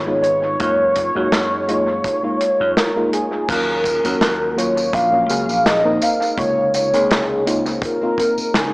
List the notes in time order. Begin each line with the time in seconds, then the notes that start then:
Already playing: G#1 C#5
0.06 G#3 B3 D#4 F4
0.23 C#5, closed hi-hat
0.59 F#2 G#3 A#3 D#4 F4, kick, closed hi-hat
0.96 kick, closed hi-hat
1.15 F#2 G#3 A#3 D#4 F#4
1.32 F#2, snare, closed hi-hat
1.68 G#3 A#3 D#4 F4, closed hi-hat
2.04 kick, closed hi-hat
2.23 G#3 A#3 D#4 F4
2.41 closed hi-hat
2.60 F#2
2.77 A#4, snare, closed hi-hat
2.95 G#3 A#3 D#4 F4
3.13 G#4, closed hi-hat
3.48 D#2 F#3 A#3 C#4 F4 A#4, kick, closed hi-hat, tambourine, crash
3.84 kick, closed hi-hat, tambourine
4.04 D#2 F#3 A#3 C#4 F#4, closed hi-hat, tambourine
4.21 D#2, snare, closed hi-hat, tambourine
4.56 F#3 A#3 C#4 F4 C#5, closed hi-hat, tambourine
4.77 tambourine
4.93 A#1 F5, kick, closed hi-hat, tambourine
5.12 F#3 A#3 C#4 F4
5.29 C#2 F#3 A#3 C#4 G#4, closed hi-hat, tambourine
5.49 A#1, tambourine
5.66 D#5, snare, closed hi-hat
5.84 A#3 C4 D#4 A#4
6.02 F5, closed hi-hat, tambourine
6.22 tambourine
6.37 C#2 C3 A#3 D#4 F4 C#5, kick, closed hi-hat, tambourine
6.74 C#5, closed hi-hat, tambourine
6.93 C#2 C3 A#3 D#4 G#4, closed hi-hat, tambourine
7.10 C#2, snare, closed hi-hat, tambourine
7.46 A#3 C4 D#4 F4, closed hi-hat, tambourine
7.66 tambourine
7.82 A#4, kick, closed hi-hat, tambourine
8.01 A#3 C4 D#4 F4
8.18 A#3 C4 D#4 A#4, kick, closed hi-hat, tambourine
8.38 muted slap bass stroke, tambourine
8.54 C#2 G#4, snare, closed hi-hat, tambourine